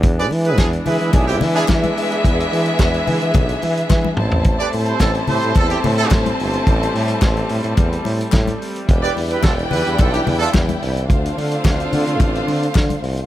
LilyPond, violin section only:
\new Staff \with { instrumentName = "Violin section" } { \time 4/4 \key e \phrygian \tempo 4 = 108 r4. <b gis' e''>2~ <b gis' e''>8~ | <b gis' e''>2.~ <b gis' e''>8 <e' c'' a''>8~ | <e' c'' a''>1~ | <e' c'' a''>2.~ <e' c'' a''>8 r8 |
<e' d'' g''>1 | <d' c'' f''>1 | }